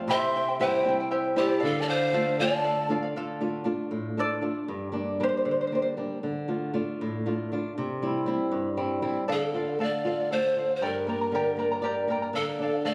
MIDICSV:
0, 0, Header, 1, 5, 480
1, 0, Start_track
1, 0, Key_signature, -1, "minor"
1, 0, Tempo, 510638
1, 86, Time_signature, 6, 3, 24, 8
1, 12166, End_track
2, 0, Start_track
2, 0, Title_t, "Quena"
2, 0, Program_c, 0, 77
2, 85, Note_on_c, 0, 84, 89
2, 533, Note_off_c, 0, 84, 0
2, 565, Note_on_c, 0, 79, 69
2, 1002, Note_off_c, 0, 79, 0
2, 1292, Note_on_c, 0, 74, 64
2, 1545, Note_on_c, 0, 77, 77
2, 1559, Note_off_c, 0, 74, 0
2, 1698, Note_on_c, 0, 81, 62
2, 1713, Note_off_c, 0, 77, 0
2, 1786, Note_on_c, 0, 77, 77
2, 1800, Note_off_c, 0, 81, 0
2, 2259, Note_off_c, 0, 77, 0
2, 2274, Note_on_c, 0, 81, 75
2, 2766, Note_off_c, 0, 81, 0
2, 12166, End_track
3, 0, Start_track
3, 0, Title_t, "Charango"
3, 0, Program_c, 1, 24
3, 89, Note_on_c, 1, 67, 87
3, 90, Note_on_c, 1, 64, 87
3, 95, Note_on_c, 1, 76, 91
3, 96, Note_on_c, 1, 79, 87
3, 103, Note_on_c, 1, 72, 82
3, 320, Note_off_c, 1, 76, 0
3, 326, Note_off_c, 1, 64, 0
3, 328, Note_off_c, 1, 67, 0
3, 328, Note_off_c, 1, 72, 0
3, 331, Note_on_c, 1, 76, 53
3, 332, Note_off_c, 1, 79, 0
3, 338, Note_on_c, 1, 64, 62
3, 340, Note_on_c, 1, 72, 63
3, 344, Note_on_c, 1, 79, 67
3, 443, Note_off_c, 1, 79, 0
3, 449, Note_off_c, 1, 76, 0
3, 451, Note_off_c, 1, 72, 0
3, 452, Note_off_c, 1, 64, 0
3, 454, Note_on_c, 1, 79, 54
3, 462, Note_on_c, 1, 72, 41
3, 475, Note_on_c, 1, 64, 41
3, 558, Note_off_c, 1, 64, 0
3, 560, Note_off_c, 1, 72, 0
3, 562, Note_off_c, 1, 79, 0
3, 569, Note_on_c, 1, 64, 86
3, 571, Note_on_c, 1, 67, 80
3, 571, Note_on_c, 1, 72, 86
3, 571, Note_on_c, 1, 76, 90
3, 574, Note_on_c, 1, 79, 88
3, 809, Note_off_c, 1, 64, 0
3, 809, Note_off_c, 1, 67, 0
3, 809, Note_off_c, 1, 76, 0
3, 810, Note_off_c, 1, 72, 0
3, 811, Note_off_c, 1, 79, 0
3, 820, Note_on_c, 1, 76, 60
3, 831, Note_on_c, 1, 79, 59
3, 832, Note_on_c, 1, 64, 62
3, 834, Note_on_c, 1, 72, 62
3, 930, Note_off_c, 1, 79, 0
3, 934, Note_off_c, 1, 76, 0
3, 936, Note_off_c, 1, 72, 0
3, 940, Note_off_c, 1, 64, 0
3, 941, Note_on_c, 1, 79, 55
3, 948, Note_on_c, 1, 72, 54
3, 954, Note_on_c, 1, 64, 44
3, 1032, Note_off_c, 1, 64, 0
3, 1036, Note_off_c, 1, 72, 0
3, 1037, Note_off_c, 1, 79, 0
3, 1043, Note_on_c, 1, 67, 70
3, 1044, Note_on_c, 1, 64, 83
3, 1048, Note_on_c, 1, 72, 81
3, 1048, Note_on_c, 1, 76, 70
3, 1048, Note_on_c, 1, 79, 81
3, 1268, Note_off_c, 1, 64, 0
3, 1270, Note_off_c, 1, 76, 0
3, 1273, Note_off_c, 1, 72, 0
3, 1280, Note_on_c, 1, 64, 69
3, 1282, Note_on_c, 1, 76, 67
3, 1284, Note_off_c, 1, 79, 0
3, 1284, Note_on_c, 1, 72, 75
3, 1286, Note_off_c, 1, 67, 0
3, 1295, Note_on_c, 1, 79, 68
3, 1377, Note_off_c, 1, 79, 0
3, 1387, Note_off_c, 1, 72, 0
3, 1388, Note_on_c, 1, 79, 44
3, 1397, Note_off_c, 1, 64, 0
3, 1398, Note_on_c, 1, 72, 48
3, 1405, Note_off_c, 1, 76, 0
3, 1408, Note_on_c, 1, 64, 43
3, 1490, Note_off_c, 1, 64, 0
3, 1494, Note_on_c, 1, 69, 82
3, 1500, Note_off_c, 1, 72, 0
3, 1504, Note_on_c, 1, 74, 86
3, 1506, Note_on_c, 1, 77, 86
3, 1519, Note_off_c, 1, 79, 0
3, 1742, Note_off_c, 1, 69, 0
3, 1753, Note_on_c, 1, 69, 59
3, 1755, Note_off_c, 1, 74, 0
3, 1758, Note_off_c, 1, 77, 0
3, 1766, Note_on_c, 1, 74, 65
3, 1770, Note_on_c, 1, 77, 70
3, 1877, Note_off_c, 1, 77, 0
3, 1882, Note_off_c, 1, 69, 0
3, 1888, Note_off_c, 1, 74, 0
3, 1888, Note_on_c, 1, 77, 51
3, 1903, Note_on_c, 1, 74, 39
3, 1996, Note_off_c, 1, 74, 0
3, 2001, Note_on_c, 1, 69, 87
3, 2002, Note_off_c, 1, 77, 0
3, 2007, Note_on_c, 1, 74, 86
3, 2013, Note_on_c, 1, 77, 83
3, 2227, Note_off_c, 1, 69, 0
3, 2238, Note_on_c, 1, 69, 51
3, 2239, Note_off_c, 1, 74, 0
3, 2244, Note_off_c, 1, 77, 0
3, 2250, Note_on_c, 1, 74, 64
3, 2255, Note_on_c, 1, 77, 68
3, 2356, Note_off_c, 1, 77, 0
3, 2365, Note_off_c, 1, 69, 0
3, 2367, Note_on_c, 1, 77, 55
3, 2368, Note_off_c, 1, 74, 0
3, 2379, Note_on_c, 1, 74, 41
3, 2475, Note_off_c, 1, 74, 0
3, 2484, Note_on_c, 1, 69, 76
3, 2486, Note_on_c, 1, 74, 68
3, 2487, Note_off_c, 1, 77, 0
3, 2499, Note_on_c, 1, 77, 74
3, 2711, Note_off_c, 1, 69, 0
3, 2721, Note_off_c, 1, 74, 0
3, 2723, Note_on_c, 1, 69, 55
3, 2728, Note_off_c, 1, 77, 0
3, 2733, Note_on_c, 1, 74, 62
3, 2740, Note_on_c, 1, 77, 70
3, 2833, Note_off_c, 1, 77, 0
3, 2844, Note_on_c, 1, 77, 57
3, 2847, Note_off_c, 1, 74, 0
3, 2848, Note_off_c, 1, 69, 0
3, 2858, Note_on_c, 1, 74, 46
3, 2968, Note_off_c, 1, 77, 0
3, 2975, Note_off_c, 1, 74, 0
3, 2975, Note_on_c, 1, 65, 54
3, 2983, Note_on_c, 1, 69, 77
3, 3898, Note_off_c, 1, 65, 0
3, 3930, Note_off_c, 1, 69, 0
3, 3942, Note_on_c, 1, 69, 65
3, 3949, Note_on_c, 1, 74, 83
3, 4862, Note_off_c, 1, 69, 0
3, 4918, Note_off_c, 1, 74, 0
3, 4920, Note_on_c, 1, 67, 53
3, 4922, Note_on_c, 1, 72, 67
3, 4959, Note_off_c, 1, 72, 0
3, 4971, Note_on_c, 1, 72, 52
3, 4975, Note_off_c, 1, 67, 0
3, 5034, Note_off_c, 1, 72, 0
3, 5050, Note_on_c, 1, 72, 46
3, 5109, Note_off_c, 1, 72, 0
3, 5124, Note_on_c, 1, 72, 43
3, 5171, Note_off_c, 1, 72, 0
3, 5182, Note_on_c, 1, 72, 47
3, 5245, Note_off_c, 1, 72, 0
3, 5272, Note_on_c, 1, 72, 40
3, 5320, Note_off_c, 1, 72, 0
3, 5331, Note_on_c, 1, 72, 49
3, 5391, Note_off_c, 1, 72, 0
3, 5405, Note_on_c, 1, 72, 42
3, 5463, Note_off_c, 1, 72, 0
3, 5472, Note_on_c, 1, 72, 53
3, 5531, Note_off_c, 1, 72, 0
3, 8724, Note_on_c, 1, 74, 70
3, 8728, Note_on_c, 1, 69, 65
3, 8737, Note_on_c, 1, 77, 82
3, 8961, Note_off_c, 1, 69, 0
3, 8969, Note_off_c, 1, 74, 0
3, 8972, Note_on_c, 1, 69, 42
3, 8976, Note_off_c, 1, 77, 0
3, 8982, Note_on_c, 1, 74, 51
3, 8992, Note_on_c, 1, 77, 55
3, 9084, Note_off_c, 1, 77, 0
3, 9094, Note_off_c, 1, 69, 0
3, 9095, Note_on_c, 1, 77, 39
3, 9099, Note_off_c, 1, 74, 0
3, 9110, Note_on_c, 1, 74, 31
3, 9210, Note_off_c, 1, 74, 0
3, 9212, Note_on_c, 1, 69, 70
3, 9213, Note_off_c, 1, 77, 0
3, 9221, Note_on_c, 1, 74, 75
3, 9224, Note_on_c, 1, 77, 77
3, 9444, Note_off_c, 1, 69, 0
3, 9455, Note_off_c, 1, 74, 0
3, 9455, Note_off_c, 1, 77, 0
3, 9455, Note_on_c, 1, 69, 50
3, 9466, Note_on_c, 1, 74, 56
3, 9466, Note_on_c, 1, 77, 57
3, 9574, Note_off_c, 1, 69, 0
3, 9577, Note_off_c, 1, 77, 0
3, 9580, Note_off_c, 1, 74, 0
3, 9589, Note_on_c, 1, 77, 45
3, 9596, Note_on_c, 1, 74, 40
3, 9689, Note_on_c, 1, 69, 67
3, 9691, Note_off_c, 1, 77, 0
3, 9693, Note_off_c, 1, 74, 0
3, 9703, Note_on_c, 1, 77, 65
3, 9704, Note_on_c, 1, 74, 68
3, 9931, Note_off_c, 1, 69, 0
3, 9937, Note_off_c, 1, 77, 0
3, 9938, Note_off_c, 1, 74, 0
3, 9945, Note_on_c, 1, 69, 47
3, 9948, Note_on_c, 1, 74, 52
3, 9954, Note_on_c, 1, 77, 50
3, 10055, Note_off_c, 1, 77, 0
3, 10058, Note_off_c, 1, 69, 0
3, 10060, Note_off_c, 1, 74, 0
3, 10067, Note_on_c, 1, 77, 43
3, 10074, Note_on_c, 1, 74, 32
3, 10164, Note_off_c, 1, 74, 0
3, 10167, Note_on_c, 1, 67, 61
3, 10171, Note_off_c, 1, 77, 0
3, 10172, Note_on_c, 1, 82, 69
3, 10174, Note_on_c, 1, 79, 66
3, 10175, Note_on_c, 1, 74, 78
3, 10176, Note_on_c, 1, 70, 71
3, 10407, Note_off_c, 1, 79, 0
3, 10409, Note_off_c, 1, 67, 0
3, 10411, Note_off_c, 1, 82, 0
3, 10412, Note_off_c, 1, 74, 0
3, 10413, Note_off_c, 1, 70, 0
3, 10418, Note_on_c, 1, 79, 48
3, 10423, Note_on_c, 1, 70, 44
3, 10427, Note_on_c, 1, 74, 54
3, 10427, Note_on_c, 1, 82, 52
3, 10528, Note_off_c, 1, 82, 0
3, 10534, Note_off_c, 1, 74, 0
3, 10534, Note_off_c, 1, 79, 0
3, 10536, Note_off_c, 1, 70, 0
3, 10539, Note_on_c, 1, 82, 40
3, 10545, Note_on_c, 1, 74, 38
3, 10556, Note_on_c, 1, 70, 34
3, 10652, Note_off_c, 1, 70, 0
3, 10654, Note_off_c, 1, 82, 0
3, 10657, Note_off_c, 1, 74, 0
3, 10664, Note_on_c, 1, 70, 68
3, 10667, Note_on_c, 1, 67, 65
3, 10667, Note_on_c, 1, 79, 75
3, 10669, Note_on_c, 1, 74, 70
3, 10671, Note_on_c, 1, 82, 71
3, 10878, Note_off_c, 1, 79, 0
3, 10881, Note_off_c, 1, 70, 0
3, 10883, Note_off_c, 1, 74, 0
3, 10890, Note_off_c, 1, 82, 0
3, 10890, Note_on_c, 1, 79, 57
3, 10892, Note_on_c, 1, 70, 62
3, 10894, Note_on_c, 1, 74, 60
3, 10897, Note_off_c, 1, 67, 0
3, 10901, Note_on_c, 1, 82, 60
3, 11000, Note_off_c, 1, 82, 0
3, 11009, Note_off_c, 1, 79, 0
3, 11010, Note_off_c, 1, 70, 0
3, 11011, Note_off_c, 1, 74, 0
3, 11011, Note_on_c, 1, 82, 50
3, 11021, Note_on_c, 1, 74, 49
3, 11025, Note_on_c, 1, 70, 43
3, 11117, Note_off_c, 1, 70, 0
3, 11122, Note_off_c, 1, 74, 0
3, 11126, Note_on_c, 1, 79, 69
3, 11127, Note_on_c, 1, 67, 72
3, 11129, Note_off_c, 1, 82, 0
3, 11129, Note_on_c, 1, 70, 68
3, 11133, Note_on_c, 1, 74, 74
3, 11141, Note_on_c, 1, 82, 75
3, 11363, Note_off_c, 1, 79, 0
3, 11366, Note_off_c, 1, 67, 0
3, 11367, Note_off_c, 1, 70, 0
3, 11369, Note_off_c, 1, 74, 0
3, 11373, Note_off_c, 1, 82, 0
3, 11375, Note_on_c, 1, 79, 65
3, 11377, Note_on_c, 1, 70, 56
3, 11381, Note_on_c, 1, 74, 60
3, 11388, Note_on_c, 1, 82, 61
3, 11476, Note_off_c, 1, 82, 0
3, 11487, Note_off_c, 1, 74, 0
3, 11487, Note_on_c, 1, 82, 38
3, 11489, Note_off_c, 1, 70, 0
3, 11490, Note_off_c, 1, 79, 0
3, 11498, Note_on_c, 1, 74, 42
3, 11500, Note_on_c, 1, 70, 37
3, 11598, Note_off_c, 1, 74, 0
3, 11604, Note_off_c, 1, 70, 0
3, 11605, Note_off_c, 1, 82, 0
3, 11607, Note_on_c, 1, 69, 78
3, 11609, Note_on_c, 1, 74, 77
3, 11614, Note_on_c, 1, 77, 69
3, 11844, Note_off_c, 1, 69, 0
3, 11845, Note_off_c, 1, 74, 0
3, 11848, Note_off_c, 1, 77, 0
3, 11862, Note_on_c, 1, 69, 52
3, 11872, Note_on_c, 1, 74, 50
3, 11875, Note_on_c, 1, 77, 62
3, 11967, Note_off_c, 1, 77, 0
3, 11972, Note_off_c, 1, 69, 0
3, 11977, Note_off_c, 1, 74, 0
3, 11978, Note_on_c, 1, 77, 42
3, 11991, Note_on_c, 1, 74, 33
3, 12072, Note_off_c, 1, 74, 0
3, 12072, Note_off_c, 1, 77, 0
3, 12079, Note_on_c, 1, 69, 66
3, 12083, Note_on_c, 1, 74, 71
3, 12084, Note_on_c, 1, 77, 66
3, 12166, Note_off_c, 1, 69, 0
3, 12166, Note_off_c, 1, 74, 0
3, 12166, Note_off_c, 1, 77, 0
3, 12166, End_track
4, 0, Start_track
4, 0, Title_t, "Pan flute"
4, 0, Program_c, 2, 75
4, 102, Note_on_c, 2, 76, 99
4, 542, Note_off_c, 2, 76, 0
4, 582, Note_on_c, 2, 72, 82
4, 1011, Note_off_c, 2, 72, 0
4, 1297, Note_on_c, 2, 67, 80
4, 1547, Note_on_c, 2, 69, 95
4, 1561, Note_off_c, 2, 67, 0
4, 1706, Note_on_c, 2, 74, 71
4, 1720, Note_off_c, 2, 69, 0
4, 1774, Note_on_c, 2, 72, 109
4, 1789, Note_off_c, 2, 74, 0
4, 2248, Note_off_c, 2, 72, 0
4, 2254, Note_on_c, 2, 74, 95
4, 2756, Note_off_c, 2, 74, 0
4, 8761, Note_on_c, 2, 69, 74
4, 9195, Note_off_c, 2, 69, 0
4, 9240, Note_on_c, 2, 74, 78
4, 9674, Note_off_c, 2, 74, 0
4, 9705, Note_on_c, 2, 72, 87
4, 10113, Note_off_c, 2, 72, 0
4, 10113, Note_on_c, 2, 72, 51
4, 10198, Note_on_c, 2, 70, 71
4, 10212, Note_off_c, 2, 72, 0
4, 11379, Note_off_c, 2, 70, 0
4, 11616, Note_on_c, 2, 69, 77
4, 12083, Note_on_c, 2, 74, 89
4, 12097, Note_off_c, 2, 69, 0
4, 12166, Note_off_c, 2, 74, 0
4, 12166, End_track
5, 0, Start_track
5, 0, Title_t, "Nylon-string guitar"
5, 0, Program_c, 3, 24
5, 71, Note_on_c, 3, 48, 68
5, 560, Note_on_c, 3, 55, 55
5, 566, Note_on_c, 3, 60, 50
5, 567, Note_on_c, 3, 64, 58
5, 787, Note_off_c, 3, 55, 0
5, 789, Note_off_c, 3, 60, 0
5, 791, Note_off_c, 3, 64, 0
5, 797, Note_on_c, 3, 55, 46
5, 802, Note_on_c, 3, 60, 45
5, 803, Note_on_c, 3, 64, 48
5, 1267, Note_off_c, 3, 60, 0
5, 1269, Note_off_c, 3, 55, 0
5, 1272, Note_off_c, 3, 64, 0
5, 1279, Note_on_c, 3, 55, 46
5, 1281, Note_on_c, 3, 60, 47
5, 1284, Note_on_c, 3, 64, 55
5, 1485, Note_off_c, 3, 48, 0
5, 1517, Note_off_c, 3, 55, 0
5, 1517, Note_off_c, 3, 60, 0
5, 1520, Note_off_c, 3, 64, 0
5, 1530, Note_on_c, 3, 50, 68
5, 2000, Note_on_c, 3, 57, 56
5, 2008, Note_on_c, 3, 62, 45
5, 2012, Note_on_c, 3, 65, 60
5, 2239, Note_off_c, 3, 57, 0
5, 2246, Note_off_c, 3, 62, 0
5, 2250, Note_off_c, 3, 65, 0
5, 2250, Note_on_c, 3, 57, 44
5, 2258, Note_on_c, 3, 62, 45
5, 2262, Note_on_c, 3, 65, 45
5, 2707, Note_off_c, 3, 57, 0
5, 2710, Note_off_c, 3, 62, 0
5, 2716, Note_off_c, 3, 65, 0
5, 2717, Note_on_c, 3, 57, 47
5, 2723, Note_on_c, 3, 62, 42
5, 2727, Note_on_c, 3, 65, 51
5, 2935, Note_off_c, 3, 50, 0
5, 2958, Note_off_c, 3, 57, 0
5, 2960, Note_off_c, 3, 62, 0
5, 2963, Note_off_c, 3, 65, 0
5, 2970, Note_on_c, 3, 50, 54
5, 3201, Note_on_c, 3, 57, 40
5, 3206, Note_on_c, 3, 62, 36
5, 3210, Note_on_c, 3, 65, 43
5, 3413, Note_off_c, 3, 57, 0
5, 3415, Note_off_c, 3, 62, 0
5, 3423, Note_on_c, 3, 57, 42
5, 3426, Note_off_c, 3, 65, 0
5, 3430, Note_on_c, 3, 62, 39
5, 3437, Note_on_c, 3, 65, 48
5, 3438, Note_off_c, 3, 50, 0
5, 3675, Note_on_c, 3, 45, 48
5, 3821, Note_off_c, 3, 57, 0
5, 3822, Note_off_c, 3, 62, 0
5, 3829, Note_off_c, 3, 65, 0
5, 3923, Note_on_c, 3, 57, 40
5, 3927, Note_on_c, 3, 62, 37
5, 3931, Note_on_c, 3, 65, 43
5, 4138, Note_off_c, 3, 57, 0
5, 4140, Note_off_c, 3, 62, 0
5, 4148, Note_off_c, 3, 65, 0
5, 4148, Note_on_c, 3, 57, 37
5, 4151, Note_off_c, 3, 45, 0
5, 4153, Note_on_c, 3, 62, 36
5, 4159, Note_on_c, 3, 65, 40
5, 4352, Note_off_c, 3, 57, 0
5, 4353, Note_off_c, 3, 62, 0
5, 4358, Note_off_c, 3, 65, 0
5, 4403, Note_on_c, 3, 43, 54
5, 4624, Note_on_c, 3, 55, 36
5, 4632, Note_on_c, 3, 58, 34
5, 4637, Note_on_c, 3, 62, 40
5, 4875, Note_off_c, 3, 43, 0
5, 4876, Note_off_c, 3, 55, 0
5, 4880, Note_off_c, 3, 58, 0
5, 4880, Note_off_c, 3, 62, 0
5, 4887, Note_on_c, 3, 55, 45
5, 4891, Note_on_c, 3, 58, 43
5, 4893, Note_on_c, 3, 62, 49
5, 5125, Note_on_c, 3, 50, 54
5, 5275, Note_off_c, 3, 55, 0
5, 5278, Note_off_c, 3, 58, 0
5, 5278, Note_off_c, 3, 62, 0
5, 5377, Note_on_c, 3, 55, 37
5, 5378, Note_on_c, 3, 58, 38
5, 5382, Note_on_c, 3, 62, 46
5, 5597, Note_off_c, 3, 50, 0
5, 5600, Note_off_c, 3, 55, 0
5, 5605, Note_off_c, 3, 58, 0
5, 5607, Note_off_c, 3, 62, 0
5, 5611, Note_on_c, 3, 55, 41
5, 5616, Note_on_c, 3, 58, 37
5, 5619, Note_on_c, 3, 62, 46
5, 5806, Note_off_c, 3, 55, 0
5, 5809, Note_off_c, 3, 58, 0
5, 5810, Note_off_c, 3, 62, 0
5, 5858, Note_on_c, 3, 50, 57
5, 6091, Note_on_c, 3, 57, 38
5, 6095, Note_on_c, 3, 62, 36
5, 6097, Note_on_c, 3, 65, 40
5, 6321, Note_off_c, 3, 57, 0
5, 6322, Note_off_c, 3, 65, 0
5, 6324, Note_off_c, 3, 50, 0
5, 6329, Note_off_c, 3, 62, 0
5, 6332, Note_on_c, 3, 57, 48
5, 6333, Note_on_c, 3, 65, 50
5, 6340, Note_on_c, 3, 62, 40
5, 6591, Note_on_c, 3, 45, 54
5, 6719, Note_off_c, 3, 57, 0
5, 6719, Note_off_c, 3, 65, 0
5, 6724, Note_off_c, 3, 62, 0
5, 6823, Note_on_c, 3, 57, 41
5, 6827, Note_on_c, 3, 62, 36
5, 6831, Note_on_c, 3, 65, 40
5, 7050, Note_off_c, 3, 45, 0
5, 7055, Note_off_c, 3, 57, 0
5, 7062, Note_off_c, 3, 62, 0
5, 7065, Note_off_c, 3, 65, 0
5, 7066, Note_on_c, 3, 57, 42
5, 7073, Note_on_c, 3, 62, 37
5, 7079, Note_on_c, 3, 65, 43
5, 7255, Note_off_c, 3, 57, 0
5, 7259, Note_off_c, 3, 62, 0
5, 7261, Note_off_c, 3, 65, 0
5, 7310, Note_on_c, 3, 48, 58
5, 7542, Note_on_c, 3, 55, 40
5, 7544, Note_on_c, 3, 60, 36
5, 7548, Note_on_c, 3, 64, 43
5, 7754, Note_off_c, 3, 55, 0
5, 7766, Note_on_c, 3, 55, 47
5, 7768, Note_off_c, 3, 60, 0
5, 7769, Note_off_c, 3, 64, 0
5, 7770, Note_off_c, 3, 48, 0
5, 7778, Note_on_c, 3, 60, 38
5, 7781, Note_on_c, 3, 64, 51
5, 8005, Note_on_c, 3, 43, 49
5, 8154, Note_off_c, 3, 55, 0
5, 8162, Note_off_c, 3, 60, 0
5, 8163, Note_off_c, 3, 64, 0
5, 8246, Note_on_c, 3, 55, 37
5, 8247, Note_on_c, 3, 60, 33
5, 8250, Note_on_c, 3, 64, 47
5, 8466, Note_off_c, 3, 60, 0
5, 8470, Note_off_c, 3, 55, 0
5, 8471, Note_off_c, 3, 64, 0
5, 8476, Note_off_c, 3, 43, 0
5, 8480, Note_on_c, 3, 60, 41
5, 8481, Note_on_c, 3, 55, 40
5, 8483, Note_on_c, 3, 64, 48
5, 8677, Note_off_c, 3, 60, 0
5, 8679, Note_off_c, 3, 55, 0
5, 8680, Note_off_c, 3, 64, 0
5, 8733, Note_on_c, 3, 50, 50
5, 8968, Note_on_c, 3, 65, 39
5, 9199, Note_on_c, 3, 57, 43
5, 9204, Note_off_c, 3, 65, 0
5, 9439, Note_off_c, 3, 57, 0
5, 9445, Note_on_c, 3, 65, 41
5, 9682, Note_off_c, 3, 65, 0
5, 9700, Note_on_c, 3, 57, 46
5, 9924, Note_on_c, 3, 65, 39
5, 9929, Note_off_c, 3, 57, 0
5, 10133, Note_off_c, 3, 50, 0
5, 10160, Note_off_c, 3, 65, 0
5, 10161, Note_on_c, 3, 43, 56
5, 10404, Note_on_c, 3, 58, 45
5, 10639, Note_off_c, 3, 58, 0
5, 10641, Note_on_c, 3, 50, 48
5, 10873, Note_on_c, 3, 58, 44
5, 10877, Note_off_c, 3, 50, 0
5, 11109, Note_on_c, 3, 74, 51
5, 11110, Note_off_c, 3, 58, 0
5, 11114, Note_on_c, 3, 62, 45
5, 11340, Note_off_c, 3, 74, 0
5, 11347, Note_off_c, 3, 62, 0
5, 11350, Note_on_c, 3, 58, 46
5, 11358, Note_on_c, 3, 70, 55
5, 11562, Note_off_c, 3, 43, 0
5, 11584, Note_off_c, 3, 70, 0
5, 11589, Note_off_c, 3, 58, 0
5, 11592, Note_on_c, 3, 50, 62
5, 11835, Note_on_c, 3, 62, 41
5, 12070, Note_off_c, 3, 62, 0
5, 12081, Note_on_c, 3, 57, 48
5, 12166, Note_off_c, 3, 50, 0
5, 12166, Note_off_c, 3, 57, 0
5, 12166, End_track
0, 0, End_of_file